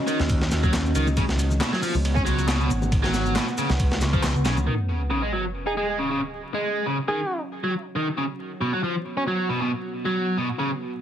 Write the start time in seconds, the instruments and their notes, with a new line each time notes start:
Already playing: ambient pad C#4 F#4 D#5
0.07 overdriven electric guitar D#3, ride, shaker
0.20 picked electric bass D#2, snare, shaker
0.29 kick, ride, shaker
0.41 snare, high conga, shaker
0.51 picked electric bass D#2, snare, ride, shaker
0.63 overdriven electric guitar F#3, kick, shaker
0.73 snare, clap, ride, shaker
0.86 shaker
0.95 picked electric bass C#2, overdriven electric guitar D#3, ride, shaker
1.07 high conga, low conga, shaker
1.17 overdriven electric guitar C#3, ambient pad B3 C#5 F#5, kick, ride, shaker
1.29 snare, shaker
1.39 ride, shaker
1.51 low conga, shaker
1.60 overdriven electric guitar B2, snare, clap, ride, high conga, shaker
1.73 overdriven electric guitar F#3, snare, shaker
1.83 overdriven electric guitar F3, open hi-hat, shaker
1.95 picked electric bass C#2, shaker
2.05 ride, shaker
2.16 overdriven electric guitar C#4, kick, high conga, shaker
2.25 picked electric bass C#2, overdriven electric guitar F#3, ride, shaker
2.38 ride, shaker
2.48 overdriven electric guitar B2, snare, clap, ride, shaker
2.60 overdriven electric guitar B2, shaker
2.70 picked electric bass G#1, shaker
2.82 high conga, low conga, shaker
2.92 ambient pad B4, kick, ride, shaker
3.03 overdriven electric guitar F#3, snare, low conga, shaker
3.14 snare, ride, shaker
3.25 low conga, shaker
3.36 overdriven electric guitar B2, snare, clap, ride, high conga, shaker
3.48 shaker
3.58 overdriven electric guitar C#3, ride, shaker
3.70 picked electric bass C#2, snare, shaker
3.80 kick, ride, shaker
3.91 snare, high conga, shaker
4.01 picked electric bass C#2, snare, ride, shaker
4.13 overdriven electric guitar F3, kick, shaker
4.23 snare, clap, ride, shaker
4.35 picked electric bass C#2, shaker
4.45 picked electric bass B1, overdriven electric guitar C#3, snare, ride, shaker
4.57 picked electric bass C#2, high conga, low conga, shaker
4.67 overdriven electric guitar D#3, ambient pad C#4 F#4 D#5, sub drop
5.11 overdriven electric guitar C#3
5.23 overdriven electric guitar G#3
5.33 overdriven electric guitar F#3
5.66 overdriven electric guitar D#4, alto saxophone G#4
5.77 overdriven electric guitar G#3, alto saxophone G#4
5.89 alto saxophone G#4
5.99 overdriven electric guitar C#3
6.11 overdriven electric guitar C#3
6.43 ambient pad C#5
6.54 overdriven electric guitar G#3
6.86 overdriven electric guitar C#3
7.08 overdriven electric guitar D#3, alto saxophone G#4
7.64 overdriven electric guitar F#3
7.96 overdriven electric guitar D#3
8.17 overdriven electric guitar C#3, ambient pad B3
8.61 overdriven electric guitar B2
8.73 overdriven electric guitar F#3
8.83 overdriven electric guitar F3
9.17 overdriven electric guitar C#4
9.28 overdriven electric guitar F#3
9.49 overdriven electric guitar B2
9.61 overdriven electric guitar B2
9.93 ambient pad B4
10.05 overdriven electric guitar F#3
10.37 overdriven electric guitar B2
10.59 overdriven electric guitar C#3